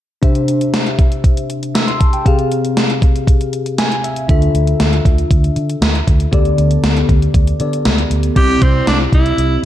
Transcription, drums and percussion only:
0.23 kick loud
0.23 closed hi-hat medium
0.35 closed hi-hat soft
0.48 closed hi-hat medium
0.61 closed hi-hat soft
0.74 snare medium
0.74 closed hi-hat medium
0.86 closed hi-hat soft
0.99 kick medium
0.99 closed hi-hat soft
1.12 closed hi-hat soft
1.24 kick medium
1.24 closed hi-hat medium
1.37 closed hi-hat soft
1.50 closed hi-hat medium
1.63 closed hi-hat soft
1.75 snare medium
1.75 closed hi-hat medium
1.88 closed hi-hat soft
2.01 kick medium
2.01 closed hi-hat medium
2.13 closed hi-hat soft
2.26 kick loud
2.26 closed hi-hat medium
2.39 closed hi-hat soft
2.52 closed hi-hat medium
2.65 closed hi-hat soft
2.77 snare medium
2.77 closed hi-hat medium
2.90 closed hi-hat soft
3.02 kick medium
3.02 closed hi-hat medium
3.16 closed hi-hat soft
3.27 kick medium
3.27 closed hi-hat medium
3.41 closed hi-hat soft
3.53 closed hi-hat medium
3.66 closed hi-hat soft
3.78 snare medium
3.78 closed hi-hat medium
3.92 closed hi-hat soft
4.04 closed hi-hat medium
4.16 closed hi-hat soft
4.29 kick loud
4.29 closed hi-hat medium
4.42 closed hi-hat soft
4.55 closed hi-hat medium
4.67 closed hi-hat medium
4.80 snare medium
4.80 closed hi-hat medium
4.93 closed hi-hat soft
5.05 kick medium
5.05 closed hi-hat medium
5.18 closed hi-hat soft
5.31 kick medium
5.31 closed hi-hat medium
5.44 closed hi-hat medium
5.56 closed hi-hat medium
5.70 closed hi-hat soft
5.82 snare loud
5.82 closed hi-hat medium
5.95 closed hi-hat soft
6.07 kick medium
6.07 closed hi-hat medium
6.20 closed hi-hat soft
6.33 kick loud
6.33 closed hi-hat medium
6.45 closed hi-hat soft
6.58 closed hi-hat medium
6.71 closed hi-hat soft
6.84 snare medium
6.84 closed hi-hat medium
6.97 closed hi-hat soft
7.09 kick medium
7.09 closed hi-hat soft
7.22 closed hi-hat soft
7.34 kick medium
7.34 closed hi-hat medium
7.47 closed hi-hat medium
7.60 closed hi-hat medium
7.73 closed hi-hat medium
7.85 snare loud
7.85 closed hi-hat medium
7.98 closed hi-hat soft
8.11 closed hi-hat medium
8.23 closed hi-hat soft
8.36 kick loud
8.36 closed hi-hat medium
8.36 crash medium
8.62 kick medium
8.62 closed hi-hat medium
8.87 snare loud
8.87 closed hi-hat medium
9.12 kick medium
9.12 closed hi-hat medium
9.26 closed hi-hat soft
9.38 closed hi-hat medium

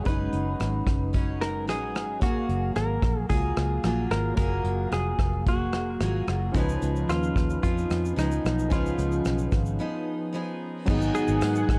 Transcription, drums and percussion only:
0.06 kick loud
0.06 closed hi-hat medium
0.33 closed hi-hat soft
0.60 cross-stick medium
0.60 closed hi-hat medium
0.87 kick medium
0.87 cross-stick medium
0.87 closed hi-hat medium
1.14 kick medium
1.14 closed hi-hat medium
1.41 cross-stick medium
1.41 closed hi-hat medium
1.69 cross-stick medium
1.69 closed hi-hat medium
1.95 cross-stick medium
1.95 closed hi-hat soft
2.22 kick loud
2.22 closed hi-hat medium
2.49 closed hi-hat soft
2.76 cross-stick medium
2.76 closed hi-hat medium
3.02 kick medium
3.02 cross-stick medium
3.02 closed hi-hat medium
3.30 kick medium
3.30 closed hi-hat medium
3.57 cross-stick medium
3.57 closed hi-hat soft
3.84 cross-stick medium
3.84 closed hi-hat medium
4.11 cross-stick medium
4.11 closed hi-hat soft
4.37 kick loud
4.37 closed hi-hat medium
4.65 closed hi-hat soft
4.92 cross-stick medium
4.92 closed hi-hat medium
5.19 kick medium
5.19 cross-stick medium
5.19 closed hi-hat medium
5.46 kick medium
5.46 closed hi-hat medium
5.73 cross-stick medium
5.73 closed hi-hat soft
6.00 cross-stick medium
6.00 closed hi-hat medium
6.28 cross-stick medium
6.28 closed hi-hat soft
6.55 kick loud
6.55 closed hi-hat medium
6.55 shaker medium
6.69 shaker medium
6.82 closed hi-hat soft
6.82 shaker soft
6.96 shaker soft
7.10 cross-stick medium
7.10 closed hi-hat medium
7.10 shaker medium
7.23 shaker soft
7.36 kick medium
7.36 cross-stick medium
7.36 closed hi-hat soft
7.36 shaker medium
7.50 shaker soft
7.64 kick medium
7.64 closed hi-hat medium
7.64 shaker medium
7.78 shaker medium
7.91 cross-stick medium
7.91 closed hi-hat soft
7.91 shaker soft
8.05 shaker soft
8.19 cross-stick medium
8.19 closed hi-hat medium
8.19 shaker medium
8.31 shaker medium
8.46 cross-stick medium
8.46 closed hi-hat soft
8.46 shaker soft
8.59 shaker medium
8.72 kick loud
8.72 closed hi-hat medium
8.72 shaker medium
8.86 shaker medium
8.99 closed hi-hat soft
8.99 shaker soft
9.12 shaker soft
9.25 cross-stick medium
9.25 closed hi-hat medium
9.25 shaker medium
9.38 shaker soft
9.52 kick medium
9.52 cross-stick medium
9.52 closed hi-hat medium
9.52 shaker medium
9.66 shaker soft
10.88 kick loud
10.88 crash loud
11.02 shaker medium
11.15 closed hi-hat soft
11.15 shaker medium
11.28 shaker soft
11.41 cross-stick medium
11.41 closed hi-hat medium
11.41 tambourine medium
11.41 shaker medium
11.55 shaker medium
11.69 kick loud
11.69 cross-stick medium
11.69 closed hi-hat medium
11.69 shaker medium

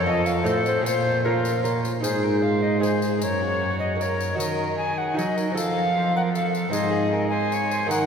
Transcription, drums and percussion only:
0.26 tambourine medium
0.46 tambourine soft
0.66 tambourine soft
0.86 tambourine medium
1.45 tambourine medium
1.65 tambourine soft
1.85 tambourine soft
2.04 tambourine medium
2.83 tambourine soft
3.02 tambourine soft
3.22 tambourine medium
4.01 tambourine soft
4.21 tambourine soft
4.40 tambourine medium
5.19 tambourine soft
5.38 tambourine soft
5.57 tambourine medium
6.35 tambourine soft
6.55 tambourine soft
6.73 tambourine medium
7.52 tambourine soft
7.71 tambourine soft
7.91 tambourine medium

